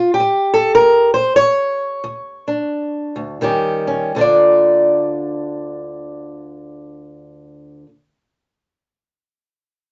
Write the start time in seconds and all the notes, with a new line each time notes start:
Already playing: D2 F4
0.14 G4
0.20 D2
0.54 A4
0.75 A#4
0.80 D2
1.14 C5
1.36 C#5
1.41 D2
2.04 D2
2.48 D4
3.16 D2
3.41 D#2 D#3 G3 C#4 G4
3.87 C#4
4.15 D2 D3 D4
4.21 F4 D5